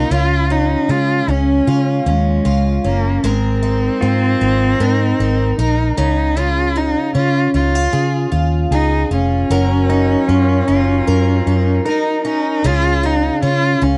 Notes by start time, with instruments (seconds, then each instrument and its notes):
Already playing: twelve-string acoustic guitar A#2 A#3 C#4 F4, cello D#4
0.11 fingered electric bass C#2, twelve-string acoustic guitar C#3 F4, cello F4
0.50 twelve-string acoustic guitar C#4, cello D#4
0.89 fingered electric bass C#3, twelve-string acoustic guitar G#3, cello F4
1.28 fingered electric bass C#2, twelve-string acoustic guitar C#4, cello C#4
1.67 fingered electric bass C#3, twelve-string acoustic guitar F4
2.06 fingered electric bass D#2, cello G#3, twelve-string acoustic guitar C#4
2.45 fingered electric bass C#2, twelve-string acoustic guitar F4
2.84 fingered electric bass F#1, cello A#3, twelve-string acoustic guitar C#4
3.24 fingered electric bass G#1, twelve-string acoustic guitar G#3 A#4, cello C4
3.63 twelve-string acoustic guitar D#4
4.01 fingered electric bass G#2, twelve-string acoustic guitar C4, pedal steel guitar F4
4.41 fingered electric bass G#1, twelve-string acoustic guitar D#4
4.80 fingered electric bass G#2, pedal steel guitar D#4, twelve-string acoustic guitar A#4
5.20 fingered electric bass G#1, twelve-string acoustic guitar D#4
5.58 fingered electric bass A#1, cello D#4, twelve-string acoustic guitar A#4
5.98 fingered electric bass C#2, twelve-string acoustic guitar C#3, cello D#4
6.37 twelve-string acoustic guitar C#3 G#4, cello F4
6.76 cello D#4, twelve-string acoustic guitar F4
7.15 fingered electric bass C#3, twelve-string acoustic guitar C#4, cello F4
7.54 fingered electric bass C#2, twelve-string acoustic guitar D#4, cello F4
7.75 twelve-string acoustic guitar F4
7.93 fingered electric bass C#3, twelve-string acoustic guitar G#4
8.32 fingered electric bass D#2, twelve-string acoustic guitar F4
8.71 fingered electric bass C#2, cello D#4, twelve-string acoustic guitar G#4
9.11 fingered electric bass F1, cello C#4, twelve-string acoustic guitar F4
9.50 fingered electric bass F#1, twelve-string acoustic guitar F#3 A#4
9.90 pedal steel guitar D#4, twelve-string acoustic guitar D#4
10.28 fingered electric bass F#2, twelve-string acoustic guitar C#4, pedal steel guitar F4
10.67 fingered electric bass F#1, twelve-string acoustic guitar D#4, pedal steel guitar F4
11.07 fingered electric bass F#2, twelve-string acoustic guitar A#4
11.47 fingered electric bass F#2, twelve-string acoustic guitar D#4
11.85 pedal steel guitar D#4, cello D#4, twelve-string acoustic guitar A#4
12.25 pedal steel guitar C#4, twelve-string acoustic guitar D#4, cello D#4
12.64 fingered electric bass C#2, twelve-string acoustic guitar C#3 G#4, cello F4
13.03 cello D#4, twelve-string acoustic guitar F4
13.42 fingered electric bass C#3, twelve-string acoustic guitar C#4, cello F4
13.82 fingered electric bass C#2, cello C#4, twelve-string acoustic guitar F4